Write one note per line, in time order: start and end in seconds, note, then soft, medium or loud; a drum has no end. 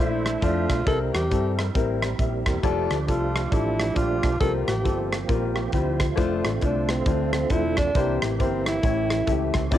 0.00 0.36 A#1 medium
0.00 0.28 A3 medium
0.00 0.83 A3 medium
0.00 0.29 D4 medium
0.00 0.83 D4 medium
0.00 0.29 E4 medium
0.00 0.45 E4 medium
0.00 0.29 C5 medium
0.00 0.85 C5 medium
0.00 0.83 E5 medium
0.26 cross-stick loud
0.26 closed hi-hat medium
0.42 0.65 F2 medium
0.42 0.72 A3 medium
0.42 0.73 D4 medium
0.42 0.73 E4 medium
0.42 0.87 F4 medium
0.42 0.73 D5 medium
0.42 kick medium
0.42 closed hi-hat medium
0.70 0.84 B1 medium
0.70 kick medium
0.70 cross-stick loud
0.70 closed hi-hat medium
0.85 1.10 C2 medium
0.85 1.54 C3 medium
0.85 1.16 G3 medium
0.85 2.59 G3 medium
0.85 1.16 C4 medium
0.85 2.60 C4 medium
0.85 0.92 D#4 soft
0.85 1.17 E4 medium
0.85 0.99 A4 loud
0.85 2.60 A#4 medium
0.85 1.17 A#4 loud
0.85 kick loud
0.85 closed hi-hat medium
0.92 2.62 E4 medium
1.14 1.28 E2 medium
1.14 1.55 G4 medium
1.14 cross-stick loud
1.14 closed hi-hat medium
1.30 1.69 G2 medium
1.30 1.61 G3 medium
1.30 1.61 C4 medium
1.30 1.61 E4 medium
1.30 1.62 A4 medium
1.30 kick medium
1.30 closed hi-hat medium
1.59 cross-stick loud
1.59 closed hi-hat medium
1.75 2.13 A1 medium
1.75 2.05 G3 medium
1.75 2.05 C4 medium
1.75 2.06 E4 medium
1.75 2.06 A#4 medium
1.75 kick loud
1.75 closed hi-hat medium
2.02 cross-stick loud
2.02 closed hi-hat medium
2.19 2.42 A#1 medium
2.19 2.45 G4 medium
2.19 2.45 E5 medium
2.19 kick medium
2.19 closed hi-hat medium
2.46 2.61 E1 medium
2.46 2.89 A#3 soft
2.46 2.89 G4 medium
2.46 kick medium
2.46 cross-stick loud
2.46 closed hi-hat medium
2.63 2.86 F1 medium
2.63 4.37 F3 medium
2.63 2.93 G3 loud
2.63 4.37 A3 medium
2.63 2.94 D4 loud
2.63 4.37 D4 medium
2.63 2.94 F4 loud
2.63 4.37 G4 medium
2.63 2.94 A4 loud
2.63 kick loud
2.63 closed hi-hat medium
2.91 3.05 D2 medium
2.91 cross-stick loud
2.91 closed hi-hat medium
3.06 3.46 C2 medium
3.06 3.37 G3 medium
3.06 3.38 D4 medium
3.06 3.38 F4 medium
3.06 3.54 F4 medium
3.06 3.38 A4 medium
3.06 kick medium
3.06 closed hi-hat medium
3.36 cross-stick loud
3.36 closed hi-hat medium
3.52 3.90 A1 medium
3.52 3.82 G3 medium
3.52 3.82 D4 medium
3.52 3.98 E4 medium
3.52 3.83 F4 medium
3.52 3.83 A4 medium
3.52 kick loud
3.52 closed hi-hat medium
3.79 cross-stick loud
3.79 closed hi-hat medium
3.94 4.19 A#1 medium
3.94 4.26 G3 medium
3.94 4.26 D4 medium
3.94 4.26 F4 medium
3.94 4.39 F4 medium
3.94 4.27 G4 medium
3.94 kick medium
3.94 closed hi-hat medium
4.23 4.38 B1 medium
4.23 kick medium
4.23 cross-stick medium
4.23 closed hi-hat medium
4.40 4.64 C2 loud
4.40 5.08 C3 medium
4.40 6.15 F3 medium
4.40 4.71 G3 medium
4.40 5.72 A#3 medium
4.40 4.71 C4 medium
4.40 5.72 C4 medium
4.40 4.71 F4 medium
4.40 5.71 G4 medium
4.40 4.52 A4 loud
4.40 4.71 A#4 loud
4.40 kick loud
4.40 closed hi-hat medium
4.68 4.82 A1 medium
4.68 5.09 G4 medium
4.68 cross-stick medium
4.68 closed hi-hat medium
4.83 5.23 G1 medium
4.83 5.14 G3 medium
4.83 5.15 C4 medium
4.83 5.15 F4 medium
4.83 5.15 A4 medium
4.83 kick medium
4.83 closed hi-hat medium
5.13 cross-stick loud
5.13 closed hi-hat medium
5.28 5.67 A#1 medium
5.28 5.59 G3 medium
5.28 5.59 C4 medium
5.28 5.60 F4 medium
5.28 5.59 A#4 medium
5.28 kick loud
5.28 closed hi-hat medium
5.56 cross-stick loud
5.56 closed hi-hat medium
5.72 6.11 D2 medium
5.72 6.03 G3 medium
5.72 6.04 C4 medium
5.72 6.00 E4 medium
5.72 6.04 F4 medium
5.72 6.04 G4 medium
5.72 5.99 C5 medium
5.72 kick medium
5.72 closed hi-hat medium
6.00 6.17 A3 soft
6.00 6.22 F4 medium
6.00 kick medium
6.00 cross-stick loud
6.00 closed hi-hat medium
6.16 6.41 F1 medium
6.16 7.91 D3 medium
6.16 6.47 A3 medium
6.16 7.91 A3 medium
6.16 7.91 C4 medium
6.16 6.47 D4 medium
6.16 6.24 E4 medium
6.16 6.48 F4 medium
6.16 6.48 C5 loud
6.16 kick loud
6.16 closed hi-hat medium
6.23 7.94 F4 medium
6.44 6.59 A1 medium
6.44 cross-stick loud
6.44 closed hi-hat medium
6.61 7.00 C2 medium
6.61 6.92 A3 medium
6.61 6.92 D4 medium
6.61 6.92 F4 medium
6.61 6.93 C5 medium
6.61 kick medium
6.61 closed hi-hat medium
6.89 7.33 C4 medium
6.89 cross-stick loud
6.89 closed hi-hat medium
7.06 7.44 D2 medium
7.06 7.37 A3 medium
7.06 7.37 D4 medium
7.06 7.37 F4 medium
7.06 7.37 C5 medium
7.06 kick loud
7.06 closed hi-hat medium
7.33 7.53 C4 medium
7.33 cross-stick loud
7.33 closed hi-hat medium
7.50 7.88 E1 medium
7.50 7.81 A3 medium
7.50 7.81 D4 medium
7.50 7.77 E4 loud
7.50 7.81 F4 medium
7.50 7.82 C5 medium
7.50 kick medium
7.50 closed hi-hat medium
7.77 8.19 D4 medium
7.77 kick medium
7.77 cross-stick medium
7.77 closed hi-hat medium
7.94 8.18 C2 loud
7.94 8.63 C3 medium
7.94 8.81 E3 medium
7.94 8.81 A#3 medium
7.94 8.25 A#3 medium
7.94 8.81 C4 medium
7.94 8.25 E4 medium
7.94 8.82 G4 medium
7.94 8.26 G4 medium
7.94 8.26 C5 loud
7.94 kick loud
7.94 closed hi-hat medium
8.22 8.37 A1 medium
8.22 cross-stick loud
8.22 closed hi-hat medium
8.39 8.77 G1 medium
8.39 8.69 A#3 medium
8.39 8.68 C4 medium
8.39 8.70 E4 medium
8.39 8.70 G4 medium
8.39 8.70 C5 medium
8.39 kick medium
8.39 closed hi-hat medium
8.66 9.55 E4 loud
8.66 cross-stick loud
8.66 closed hi-hat medium
8.82 9.21 A1 loud
8.82 9.51 A2 medium
8.82 9.70 E3 medium
8.82 9.13 A3 medium
8.82 9.70 A3 medium
8.82 9.70 C#4 medium
8.82 9.14 E4 medium
8.82 9.70 G4 medium
8.82 9.14 G4 medium
8.82 9.15 C#5 medium
8.82 kick loud
8.82 closed hi-hat medium
9.10 cross-stick loud
9.10 closed hi-hat medium
9.27 9.51 C#2 medium
9.27 9.58 A3 medium
9.27 9.58 E4 medium
9.27 9.58 G4 medium
9.27 9.59 E5 medium
9.27 kick medium
9.27 closed hi-hat medium
9.54 9.70 C#2 medium
9.54 kick medium
9.54 cross-stick medium
9.54 closed hi-hat medium
9.71 9.78 D2 loud
9.71 9.78 D3 medium
9.71 9.78 F3 medium
9.71 9.78 C4 loud
9.71 9.78 C4 medium
9.71 9.78 D#4 medium
9.71 9.78 E4 medium
9.71 9.78 F4 loud
9.71 9.78 D5 loud
9.71 kick loud
9.71 closed hi-hat medium